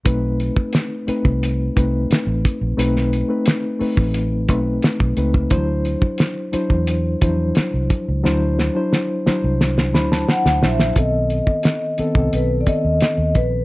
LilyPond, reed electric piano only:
\new Staff \with { instrumentName = "Reed electric piano" } { \time 4/4 \key b \phrygian \tempo 4 = 88 << { r1 | r1 | r1 | r2 r8 b''16 a''16 fis''8 e''8 |
r1 | } \\ { <a c' dis' b'>4 r8 <a c' dis' b'>8 r8 <a c' dis' b'>4 r8 | <a c' dis' b'>8 r16 <a c' dis' b'>8 r16 <a c' dis' b'>8 r8 <a c' dis' b'>8 r8 <a c' dis' b'>16 r16 | <e fis d' e' c''>4 r8 <fis d' e' c''>8 r8 <f fis d' e' c''>4 r8 | <fis d' e' c''>8 r16 <fis d' e' c''>8 r16 <fis d' e' c''>8 r8 <fis d' e' c''>8 r8 <fis d' e' c''>16 r16 |
<dis b c' a'>4 r8 <dis b c' a'>16 <dis b c' a'>8 r16 <dis b c' a'>4 r8 | } >> }